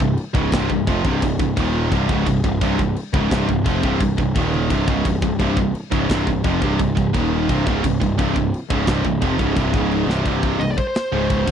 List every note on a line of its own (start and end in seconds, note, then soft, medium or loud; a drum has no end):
0.00 0.17 C1 medium
0.00 0.14 C2 medium
0.00 0.14 G2 medium
0.00 kick loud
0.17 crash medium
0.34 0.51 C#1 medium
0.34 0.51 C#2 loud
0.34 0.52 G#2 loud
0.34 0.52 C#3 loud
0.34 kick loud
0.51 0.69 C1 loud
0.51 0.68 C2 medium
0.51 0.69 G2 loud
0.51 0.69 C3 loud
0.51 kick medium
0.51 snare loud
0.51 crash medium
0.69 0.86 C1 medium
0.69 0.83 C2 medium
0.69 0.84 G2 medium
0.69 kick medium
0.87 1.04 F1 loud
0.87 1.04 F2 medium
0.87 1.04 C3 medium
0.87 1.05 F3 loud
0.87 kick loud
0.87 crash medium
1.04 1.21 C1 medium
1.04 1.21 C2 loud
1.04 1.22 G2 loud
1.04 1.22 C3 loud
1.04 kick loud
1.22 1.38 C1 medium
1.22 1.36 C2 medium
1.22 1.36 G2 medium
1.22 kick medium
1.22 crash medium
1.39 1.56 C1 medium
1.39 1.53 C2 medium
1.39 1.54 G2 medium
1.39 kick loud
1.56 1.89 D#1 loud
1.56 1.91 D#2 loud
1.56 1.91 A#2 loud
1.56 1.91 D#3 loud
1.56 kick medium
1.56 crash medium
1.91 2.08 C1 loud
1.91 2.08 C2 medium
1.91 2.09 G2 loud
1.91 2.09 C3 loud
1.91 kick medium
1.91 crash medium
2.09 2.26 C#1 loud
2.09 2.26 C#2 loud
2.09 2.26 G#2 loud
2.09 2.27 C#3 loud
2.09 kick loud
2.27 2.43 C1 medium
2.27 2.41 C2 medium
2.27 2.41 G2 medium
2.27 kick loud
2.27 crash medium
2.44 2.61 C1 medium
2.44 2.58 C2 medium
2.44 2.59 G2 medium
2.44 kick medium
2.61 2.78 C1 loud
2.61 2.78 C2 loud
2.61 2.78 G2 loud
2.61 2.79 C3 loud
2.61 kick loud
2.61 crash medium
2.79 2.95 C1 medium
2.79 2.93 C2 medium
2.79 2.93 G2 medium
2.79 kick loud
2.96 crash medium
3.13 3.30 C#1 loud
3.13 3.29 C#2 loud
3.13 3.30 G#2 loud
3.13 3.30 C#3 loud
3.13 kick loud
3.30 3.48 C1 loud
3.30 3.46 C2 loud
3.30 3.47 G2 loud
3.30 3.48 C3 loud
3.30 kick loud
3.30 snare loud
3.30 crash soft
3.48 3.65 C1 medium
3.48 3.62 C2 medium
3.48 3.62 G2 medium
3.48 kick medium
3.64 3.82 F1 loud
3.64 3.82 F2 loud
3.64 3.81 C3 medium
3.64 3.82 F3 medium
3.64 kick loud
3.64 crash medium
3.82 4.00 C1 medium
3.82 3.98 C2 loud
3.82 3.99 G2 loud
3.82 4.00 C3 loud
3.82 kick loud
4.00 4.17 C1 medium
4.00 4.14 C2 medium
4.00 4.14 G2 medium
4.00 kick loud
4.00 crash medium
4.17 4.34 C1 medium
4.17 4.32 C2 medium
4.17 4.32 G2 medium
4.17 kick loud
4.35 4.68 D#1 loud
4.35 4.69 D#2 medium
4.35 4.69 A#2 medium
4.35 4.70 D#3 loud
4.35 kick loud
4.35 crash medium
4.54 high tom medium
4.69 4.87 C1 loud
4.69 4.87 C2 loud
4.69 4.87 G2 loud
4.69 4.87 C3 medium
4.69 kick medium
4.69 crash medium
4.88 5.04 C#1 loud
4.88 5.05 C#2 medium
4.88 5.05 G#2 medium
4.88 5.05 C#3 loud
4.88 kick loud
5.05 5.21 C1 medium
5.05 5.20 C2 medium
5.05 5.20 G2 medium
5.05 kick loud
5.05 crash medium
5.22 5.39 C1 medium
5.22 5.36 C2 medium
5.22 5.37 G2 medium
5.22 kick loud
5.39 5.56 C1 loud
5.39 5.56 C2 loud
5.39 5.57 G2 loud
5.39 5.57 C3 medium
5.39 kick loud
5.39 crash medium
5.57 5.73 C1 medium
5.57 5.71 C2 medium
5.57 5.72 G2 medium
5.57 kick loud
5.75 crash medium
5.91 6.08 C#1 loud
5.91 6.09 C#2 medium
5.91 6.09 G#2 loud
5.91 6.09 C#3 loud
5.91 kick loud
6.09 6.26 C1 loud
6.09 6.26 C2 loud
6.09 6.26 G2 loud
6.09 6.27 C3 loud
6.09 kick medium
6.09 snare loud
6.09 crash medium
6.27 6.43 C1 medium
6.27 6.41 C2 medium
6.27 6.41 G2 medium
6.27 kick loud
6.44 6.61 F1 loud
6.44 6.61 F2 medium
6.44 6.61 C3 loud
6.44 6.62 F3 loud
6.44 kick loud
6.44 crash medium
6.62 6.78 C1 loud
6.62 6.78 C2 loud
6.62 6.79 G2 loud
6.62 6.79 C3 loud
6.62 kick loud
6.79 6.95 C1 medium
6.79 6.93 C2 medium
6.79 6.93 G2 medium
6.79 kick loud
6.79 crash medium
6.97 7.13 C1 medium
6.97 7.11 C2 medium
6.97 7.11 G2 medium
6.97 kick loud
7.14 7.47 D#1 loud
7.14 7.48 D#2 medium
7.14 7.48 A#2 loud
7.14 7.49 D#3 loud
7.14 kick loud
7.14 crash medium
7.49 7.65 C1 loud
7.49 7.66 C2 loud
7.49 7.66 G2 medium
7.49 7.66 C3 loud
7.49 kick loud
7.49 crash medium
7.66 7.83 C#1 loud
7.66 7.83 C#2 medium
7.66 7.83 G#2 medium
7.66 7.83 C#3 loud
7.66 kick loud
7.84 8.00 C1 medium
7.84 7.97 C2 medium
7.84 7.98 G2 medium
7.84 kick loud
7.84 crash medium
8.00 8.17 C1 medium
8.00 8.14 C2 medium
8.00 8.15 G2 medium
8.00 kick loud
8.18 8.34 C1 loud
8.18 8.34 C2 loud
8.18 8.35 G2 loud
8.18 8.36 C3 loud
8.18 kick loud
8.18 crash medium
8.36 8.52 C1 medium
8.36 8.49 C2 medium
8.36 8.50 G2 medium
8.36 kick loud
8.54 crash medium
8.70 8.86 C#1 medium
8.70 8.87 C#2 medium
8.70 8.87 G#2 loud
8.70 8.88 C#3 loud
8.70 kick loud
8.87 9.03 C1 loud
8.87 9.04 C2 medium
8.87 9.04 G2 loud
8.87 9.05 C3 loud
8.87 kick loud
8.87 snare loud
8.87 crash medium
9.05 9.21 C1 medium
9.05 9.19 C2 medium
9.05 9.19 G2 medium
9.05 kick loud
9.21 9.38 F1 loud
9.21 9.38 F2 medium
9.21 9.39 C3 loud
9.21 9.39 F3 medium
9.21 kick loud
9.21 crash medium
9.38 9.56 C#1 loud
9.38 9.55 C#2 loud
9.38 9.55 G#2 medium
9.38 9.56 C#3 loud
9.38 kick loud
9.56 9.73 C1 medium
9.56 9.72 C2 medium
9.56 9.73 G2 loud
9.56 9.73 C3 loud
9.56 kick loud
9.56 crash medium
9.72 10.06 C#1 loud
9.72 10.07 C#2 medium
9.72 10.07 G#2 medium
9.72 10.08 C#3 loud
9.72 kick loud
9.91 crash medium
10.07 10.24 C1 loud
10.07 10.23 C2 loud
10.07 10.24 G2 loud
10.07 10.24 C3 medium
10.07 snare medium
10.24 10.58 C1 medium
10.24 10.58 C2 medium
10.24 10.58 G2 medium
10.24 10.60 C3 loud
10.24 kick medium
10.24 crash medium
10.43 kick medium
10.59 10.77 C1 medium
10.59 10.74 C2 medium
10.59 10.74 G2 medium
10.59 10.69 D#5 medium
10.59 crash medium
10.71 10.77 D5 medium
10.77 10.86 C5 loud
10.77 muted distorted electric guitar stroke medium
10.77 muted picked electric bass stroke soft
10.77 muted overdriven electric guitar stroke medium
10.77 kick medium
10.87 11.51 C5 medium
10.95 snare medium
10.95 crash medium
11.12 11.45 C#1 loud
11.12 11.47 C#2 medium
11.12 11.47 G#2 medium
11.12 11.46 C#3 loud
11.30 kick medium
11.30 crash medium
11.47 11.51 F#1 loud
11.47 11.51 F#2 loud
11.47 11.51 C#3 medium
11.47 11.51 F#3 loud
11.47 kick loud
11.47 crash loud